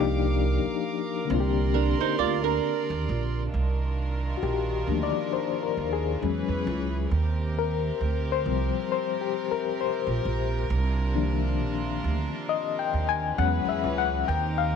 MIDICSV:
0, 0, Header, 1, 6, 480
1, 0, Start_track
1, 0, Key_signature, -3, "minor"
1, 0, Tempo, 895522
1, 1886, Time_signature, 4, 2, 24, 8
1, 7910, End_track
2, 0, Start_track
2, 0, Title_t, "Nylon-string guitar"
2, 0, Program_c, 0, 24
2, 933, Note_on_c, 0, 70, 82
2, 936, Note_on_c, 0, 62, 68
2, 1064, Note_off_c, 0, 70, 0
2, 1065, Note_off_c, 0, 62, 0
2, 1074, Note_on_c, 0, 72, 79
2, 1077, Note_on_c, 0, 63, 75
2, 1165, Note_off_c, 0, 72, 0
2, 1166, Note_off_c, 0, 63, 0
2, 1172, Note_on_c, 0, 74, 81
2, 1176, Note_on_c, 0, 65, 81
2, 1303, Note_off_c, 0, 74, 0
2, 1305, Note_off_c, 0, 65, 0
2, 1307, Note_on_c, 0, 70, 77
2, 1310, Note_on_c, 0, 62, 58
2, 1864, Note_off_c, 0, 70, 0
2, 1866, Note_off_c, 0, 62, 0
2, 7910, End_track
3, 0, Start_track
3, 0, Title_t, "String section"
3, 0, Program_c, 1, 48
3, 0, Note_on_c, 1, 70, 84
3, 0, Note_on_c, 1, 77, 66
3, 0, Note_on_c, 1, 86, 68
3, 668, Note_off_c, 1, 77, 0
3, 669, Note_off_c, 1, 86, 0
3, 684, Note_on_c, 1, 74, 66
3, 685, Note_on_c, 1, 84, 66
3, 1866, Note_off_c, 1, 70, 0
3, 1873, Note_off_c, 1, 74, 0
3, 1873, Note_off_c, 1, 84, 0
3, 1884, Note_on_c, 1, 65, 67
3, 1885, Note_on_c, 1, 51, 72
3, 1885, Note_on_c, 1, 62, 63
3, 1886, Note_on_c, 1, 70, 74
3, 3310, Note_off_c, 1, 65, 0
3, 3311, Note_off_c, 1, 51, 0
3, 3311, Note_off_c, 1, 62, 0
3, 3311, Note_off_c, 1, 70, 0
3, 3324, Note_on_c, 1, 52, 74
3, 3326, Note_on_c, 1, 61, 65
3, 3326, Note_on_c, 1, 68, 67
3, 3326, Note_on_c, 1, 71, 83
3, 3800, Note_off_c, 1, 52, 0
3, 3801, Note_off_c, 1, 61, 0
3, 3801, Note_off_c, 1, 68, 0
3, 3801, Note_off_c, 1, 71, 0
3, 3803, Note_on_c, 1, 48, 73
3, 3805, Note_on_c, 1, 67, 63
3, 3805, Note_on_c, 1, 70, 77
3, 3807, Note_on_c, 1, 60, 65
3, 5706, Note_off_c, 1, 67, 0
3, 5707, Note_off_c, 1, 60, 0
3, 5723, Note_on_c, 1, 62, 66
3, 5723, Note_on_c, 1, 65, 69
3, 7143, Note_off_c, 1, 48, 0
3, 7144, Note_off_c, 1, 70, 0
3, 7150, Note_off_c, 1, 62, 0
3, 7150, Note_off_c, 1, 65, 0
3, 7162, Note_on_c, 1, 68, 73
3, 7163, Note_on_c, 1, 61, 68
3, 7163, Note_on_c, 1, 71, 84
3, 7165, Note_on_c, 1, 52, 77
3, 7639, Note_off_c, 1, 61, 0
3, 7639, Note_off_c, 1, 68, 0
3, 7640, Note_off_c, 1, 52, 0
3, 7640, Note_off_c, 1, 71, 0
3, 7646, Note_on_c, 1, 63, 81
3, 7646, Note_on_c, 1, 67, 67
3, 7647, Note_on_c, 1, 60, 69
3, 7647, Note_on_c, 1, 70, 81
3, 7910, Note_off_c, 1, 60, 0
3, 7910, Note_off_c, 1, 63, 0
3, 7910, Note_off_c, 1, 67, 0
3, 7910, Note_off_c, 1, 70, 0
3, 7910, End_track
4, 0, Start_track
4, 0, Title_t, "Reed electric piano"
4, 0, Program_c, 2, 4
4, 0, Note_on_c, 2, 53, 80
4, 0, Note_on_c, 2, 58, 71
4, 0, Note_on_c, 2, 62, 78
4, 0, Note_on_c, 2, 63, 70
4, 0, Note_on_c, 2, 67, 84
4, 0, Note_on_c, 2, 74, 59
4, 63, Control_c, 2, 64, 127
4, 99, Note_off_c, 2, 74, 0
4, 670, Note_on_c, 2, 50, 76
4, 675, Note_off_c, 2, 58, 0
4, 682, Note_on_c, 2, 58, 67
4, 685, Note_off_c, 2, 53, 0
4, 690, Note_off_c, 2, 62, 0
4, 692, Control_c, 2, 64, 0
4, 693, Note_off_c, 2, 63, 0
4, 694, Note_on_c, 2, 60, 68
4, 697, Note_off_c, 2, 67, 0
4, 706, Note_on_c, 2, 62, 67
4, 718, Note_on_c, 2, 65, 67
4, 743, Note_off_c, 2, 65, 0
4, 752, Note_on_c, 2, 67, 84
4, 798, Control_c, 2, 64, 127
4, 1856, Note_off_c, 2, 50, 0
4, 1862, Note_off_c, 2, 58, 0
4, 1868, Note_off_c, 2, 60, 0
4, 1874, Note_off_c, 2, 62, 0
4, 1893, Control_c, 2, 64, 0
4, 1898, Note_off_c, 2, 67, 0
4, 1977, Control_c, 2, 64, 127
4, 2345, Note_on_c, 2, 66, 50
4, 2371, Note_off_c, 2, 66, 0
4, 2375, Note_on_c, 2, 67, 76
4, 2612, Note_on_c, 2, 51, 46
4, 2615, Note_on_c, 2, 53, 51
4, 2616, Note_on_c, 2, 58, 48
4, 2619, Note_on_c, 2, 62, 57
4, 2697, Note_on_c, 2, 74, 98
4, 2700, Note_off_c, 2, 67, 0
4, 2856, Note_off_c, 2, 74, 0
4, 2857, Note_on_c, 2, 72, 78
4, 3016, Note_off_c, 2, 72, 0
4, 3018, Note_on_c, 2, 70, 84
4, 3177, Note_off_c, 2, 70, 0
4, 3177, Note_on_c, 2, 68, 78
4, 3308, Note_off_c, 2, 51, 0
4, 3309, Note_off_c, 2, 53, 0
4, 3310, Note_off_c, 2, 58, 0
4, 3311, Note_off_c, 2, 62, 0
4, 3333, Control_c, 2, 64, 0
4, 3334, Note_on_c, 2, 54, 61
4, 3337, Note_on_c, 2, 56, 51
4, 3341, Note_on_c, 2, 61, 65
4, 3411, Control_c, 2, 64, 127
4, 3630, Note_off_c, 2, 68, 0
4, 3665, Note_off_c, 2, 54, 0
4, 3667, Note_off_c, 2, 56, 0
4, 3669, Note_off_c, 2, 61, 0
4, 3813, Control_c, 2, 64, 0
4, 3890, Control_c, 2, 64, 127
4, 4066, Note_on_c, 2, 70, 90
4, 4460, Note_on_c, 2, 72, 107
4, 4468, Note_off_c, 2, 70, 0
4, 4536, Note_on_c, 2, 53, 59
4, 4539, Note_on_c, 2, 55, 49
4, 4542, Note_on_c, 2, 60, 58
4, 4752, Note_off_c, 2, 72, 0
4, 4781, Note_on_c, 2, 72, 86
4, 4938, Note_off_c, 2, 72, 0
4, 4938, Note_on_c, 2, 67, 82
4, 5097, Note_off_c, 2, 67, 0
4, 5100, Note_on_c, 2, 70, 96
4, 5229, Note_off_c, 2, 53, 0
4, 5231, Note_off_c, 2, 55, 0
4, 5233, Note_off_c, 2, 60, 0
4, 5256, Note_on_c, 2, 72, 90
4, 5258, Note_off_c, 2, 70, 0
4, 5475, Note_off_c, 2, 72, 0
4, 5733, Control_c, 2, 64, 0
4, 5823, Control_c, 2, 64, 127
4, 5972, Note_on_c, 2, 51, 55
4, 5975, Note_on_c, 2, 53, 50
4, 5977, Note_on_c, 2, 58, 52
4, 5979, Note_on_c, 2, 62, 59
4, 6696, Note_on_c, 2, 75, 93
4, 6840, Note_off_c, 2, 75, 0
4, 6856, Note_on_c, 2, 79, 103
4, 7015, Note_off_c, 2, 79, 0
4, 7015, Note_on_c, 2, 80, 110
4, 7147, Note_off_c, 2, 51, 0
4, 7149, Note_off_c, 2, 53, 0
4, 7150, Note_off_c, 2, 58, 0
4, 7151, Note_off_c, 2, 62, 0
4, 7171, Note_on_c, 2, 54, 60
4, 7174, Control_c, 2, 64, 0
4, 7174, Note_on_c, 2, 56, 58
4, 7174, Note_on_c, 2, 78, 116
4, 7175, Note_off_c, 2, 80, 0
4, 7177, Note_on_c, 2, 61, 74
4, 7279, Control_c, 2, 64, 127
4, 7334, Note_off_c, 2, 78, 0
4, 7336, Note_on_c, 2, 76, 87
4, 7495, Note_on_c, 2, 78, 95
4, 7496, Note_off_c, 2, 76, 0
4, 7503, Note_off_c, 2, 54, 0
4, 7505, Note_off_c, 2, 56, 0
4, 7507, Note_off_c, 2, 61, 0
4, 7653, Control_c, 2, 64, 0
4, 7655, Note_off_c, 2, 78, 0
4, 7655, Note_on_c, 2, 79, 117
4, 7739, Control_c, 2, 64, 127
4, 7799, Note_off_c, 2, 79, 0
4, 7815, Note_on_c, 2, 77, 100
4, 7885, Note_off_c, 2, 77, 0
4, 7910, End_track
5, 0, Start_track
5, 0, Title_t, "Upright bass"
5, 0, Program_c, 3, 32
5, 0, Note_on_c, 3, 36, 108
5, 305, Note_off_c, 3, 36, 0
5, 697, Note_on_c, 3, 36, 105
5, 1026, Note_off_c, 3, 36, 0
5, 1174, Note_on_c, 3, 38, 76
5, 1380, Note_off_c, 3, 38, 0
5, 1555, Note_on_c, 3, 39, 89
5, 1638, Note_off_c, 3, 39, 0
5, 1656, Note_on_c, 3, 34, 87
5, 1862, Note_off_c, 3, 34, 0
5, 1896, Note_on_c, 3, 36, 86
5, 2312, Note_off_c, 3, 36, 0
5, 2373, Note_on_c, 3, 34, 86
5, 2580, Note_off_c, 3, 34, 0
5, 2612, Note_on_c, 3, 38, 79
5, 2733, Note_off_c, 3, 38, 0
5, 3095, Note_on_c, 3, 39, 83
5, 3301, Note_off_c, 3, 39, 0
5, 3337, Note_on_c, 3, 40, 86
5, 3455, Note_off_c, 3, 40, 0
5, 3475, Note_on_c, 3, 40, 78
5, 3558, Note_off_c, 3, 40, 0
5, 3574, Note_on_c, 3, 37, 95
5, 3781, Note_off_c, 3, 37, 0
5, 3813, Note_on_c, 3, 39, 97
5, 4230, Note_off_c, 3, 39, 0
5, 4292, Note_on_c, 3, 38, 87
5, 4533, Note_on_c, 3, 36, 90
5, 4541, Note_off_c, 3, 38, 0
5, 4654, Note_off_c, 3, 36, 0
5, 5396, Note_on_c, 3, 34, 85
5, 5479, Note_off_c, 3, 34, 0
5, 5495, Note_on_c, 3, 34, 92
5, 5701, Note_off_c, 3, 34, 0
5, 5736, Note_on_c, 3, 36, 102
5, 6215, Note_off_c, 3, 36, 0
5, 6215, Note_on_c, 3, 34, 94
5, 6421, Note_off_c, 3, 34, 0
5, 6453, Note_on_c, 3, 38, 87
5, 6574, Note_off_c, 3, 38, 0
5, 6932, Note_on_c, 3, 39, 82
5, 7140, Note_off_c, 3, 39, 0
5, 7174, Note_on_c, 3, 40, 103
5, 7294, Note_off_c, 3, 40, 0
5, 7317, Note_on_c, 3, 40, 86
5, 7399, Note_off_c, 3, 40, 0
5, 7417, Note_on_c, 3, 37, 92
5, 7622, Note_off_c, 3, 37, 0
5, 7656, Note_on_c, 3, 39, 102
5, 7910, Note_off_c, 3, 39, 0
5, 7910, End_track
6, 0, Start_track
6, 0, Title_t, "Muted upright bass strokes"
6, 356, Note_on_c, 9, 29, 46
6, 410, Note_off_c, 9, 29, 0
6, 1077, Note_on_c, 9, 29, 46
6, 1131, Note_off_c, 9, 29, 0
6, 7910, End_track
0, 0, End_of_file